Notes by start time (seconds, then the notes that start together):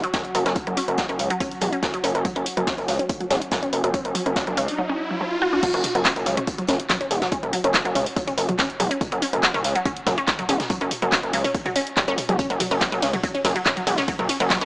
Already playing: F#3 F#4
0.04 F#3, closed hi-hat
0.14 F#1 C#4, kick, snare, closed hi-hat
0.25 closed hi-hat
0.34 F#1 F#3, closed hi-hat, open hi-hat
0.46 F#1 C#4, snare, closed hi-hat
0.55 kick, closed hi-hat
0.67 F#1 F#3, closed hi-hat
0.77 C#4, closed hi-hat, open hi-hat
0.88 F#1, closed hi-hat
0.97 F#3, kick, snare, closed hi-hat
1.09 F#1 C#4, closed hi-hat
1.19 C#2, closed hi-hat, open hi-hat
1.30 F#3, closed hi-hat
1.40 C#4, kick, closed hi-hat
1.51 closed hi-hat
1.61 E1 F#3, closed hi-hat, open hi-hat
1.73 C#4, closed hi-hat
1.83 F#1, kick, snare, closed hi-hat
1.94 F#3, closed hi-hat
2.04 F#1 C#4, closed hi-hat, open hi-hat
2.15 F#1, closed hi-hat
2.25 F#3, kick, closed hi-hat, riser
2.36 F#1 C#4, closed hi-hat
2.46 closed hi-hat, open hi-hat
2.57 F#1 F#3, closed hi-hat
2.67 C#4, kick, snare, closed hi-hat
2.78 F#1, closed hi-hat
2.88 C#2 F#3, snare, closed hi-hat, open hi-hat
2.99 C#4, closed hi-hat
3.09 kick, closed hi-hat
3.20 F#3, closed hi-hat
3.30 E1 C#4, kick, snare, closed hi-hat, open hi-hat
3.42 closed hi-hat
3.51 F#1 F#3, kick, snare, closed hi-hat
3.63 C#4, closed hi-hat
3.73 F#1, open hi-hat
3.84 F#1 F#3, closed hi-hat
3.94 C#4, kick, closed hi-hat
4.05 F#1, closed hi-hat
4.15 F#3, closed hi-hat, open hi-hat
4.26 F#1 C#4, closed hi-hat
4.36 kick, snare, closed hi-hat
4.47 F#1 F#3, closed hi-hat
4.57 C#2 C#4, closed hi-hat, open hi-hat
4.68 open hi-hat
4.78 F#3
4.89 C#4
5.11 F#3
5.21 F#3
5.42 F#4
5.53 D4
5.63 F#3, kick, closed hi-hat, mid tom, crash
5.74 F#1 C#4, closed hi-hat
5.84 closed hi-hat, mid tom, open hi-hat
5.95 F#1 F#3, closed hi-hat
6.05 C#4, kick, snare, clap, closed hi-hat
6.16 F#1, closed hi-hat, mid tom
6.26 C#2 F#3, snare, closed hi-hat, open hi-hat
6.37 C#4, closed hi-hat, mid tom
6.47 kick, closed hi-hat
6.58 F#3, closed hi-hat
6.67 F#1 C#4, kick, snare, closed hi-hat, mid tom, open hi-hat
6.80 closed hi-hat
6.90 F#3, kick, snare, clap, closed hi-hat, mid tom
7.01 C#4, closed hi-hat
7.11 E1, closed hi-hat, open hi-hat
7.22 F#3, snare, closed hi-hat, mid tom
7.31 C#4, kick, closed hi-hat
7.43 F#1, closed hi-hat, mid tom
7.53 F#3, closed hi-hat, open hi-hat
7.64 F#1 C#4, closed hi-hat
7.74 kick, snare, clap, closed hi-hat, mid tom
7.85 F#1 F#3, closed hi-hat
7.95 C#2 C#4, closed hi-hat, mid tom, open hi-hat
8.06 open hi-hat
8.16 F#3, kick, closed hi-hat
8.28 C#4, closed hi-hat, mid tom
8.38 F#1, closed hi-hat, open hi-hat
8.49 F#3, closed hi-hat, mid tom
8.59 C#4, kick, snare, clap, closed hi-hat
8.70 closed hi-hat
8.80 E1 F#3, closed hi-hat, mid tom, open hi-hat
8.91 C#4, closed hi-hat
9.01 kick, closed hi-hat, mid tom
9.12 F#1 F#3, closed hi-hat
9.22 C#4, closed hi-hat, open hi-hat
9.33 F#1, closed hi-hat, mid tom
9.43 F#3, kick, snare, clap, closed hi-hat
9.54 F#1 C#4, closed hi-hat, mid tom
9.64 C#2, snare, closed hi-hat, open hi-hat
9.75 F#3, closed hi-hat
9.85 C#4, kick, closed hi-hat, mid tom
9.97 closed hi-hat
10.06 F#1 F#3, kick, snare, closed hi-hat, mid tom, open hi-hat
10.18 C#4, closed hi-hat
10.27 kick, snare, clap, closed hi-hat
10.39 F#3, closed hi-hat, mid tom
10.49 E1 C#4, closed hi-hat, open hi-hat
10.60 snare, closed hi-hat, mid tom
10.70 F#3, kick, closed hi-hat
10.81 F#1 C#4, closed hi-hat
10.91 closed hi-hat, mid tom, open hi-hat
11.02 F#1 F#3, closed hi-hat
11.12 C#4, kick, snare, clap, closed hi-hat, mid tom
11.23 F#1, closed hi-hat
11.33 C#2 F#3, closed hi-hat, open hi-hat
11.44 C#4, mid tom, open hi-hat
11.54 kick, closed hi-hat
11.65 F#3, closed hi-hat, mid tom
11.76 C#4, closed hi-hat, open hi-hat
11.87 closed hi-hat
11.96 G3, kick, snare, clap, closed hi-hat, mid tom
12.08 F#1 C#4, closed hi-hat
12.17 closed hi-hat, mid tom, open hi-hat
12.29 E1 F#3, closed hi-hat
12.39 C#4, kick, closed hi-hat, mid tom
12.50 F#1 F#3, closed hi-hat
12.60 F#3, closed hi-hat, mid tom, open hi-hat, ride
12.71 F#1 C#4, closed hi-hat
12.81 F#3, kick, snare, clap, closed hi-hat
12.92 F#1 F#3, closed hi-hat, mid tom
13.02 C#2 C#4, snare, closed hi-hat, open hi-hat, ride
13.13 F#3, closed hi-hat, mid tom
13.23 F#3, kick, closed hi-hat
13.35 C#4, closed hi-hat
13.44 F#1 F#3, kick, snare, closed hi-hat, mid tom, open hi-hat, ride
13.56 F#3, closed hi-hat
13.65 C#4, kick, snare, clap, closed hi-hat, mid tom
13.77 F#3, closed hi-hat
13.87 E1 F#3, closed hi-hat, open hi-hat, ride
13.97 C#4, snare, closed hi-hat, mid tom
14.08 F#3, kick, closed hi-hat
14.19 F#1 F#3, closed hi-hat, mid tom
14.29 C#4, closed hi-hat, open hi-hat, ride
14.40 F#1 F#3, closed hi-hat
14.50 F#3, kick, snare, clap, closed hi-hat, mid tom
14.61 F#1 C#4, closed hi-hat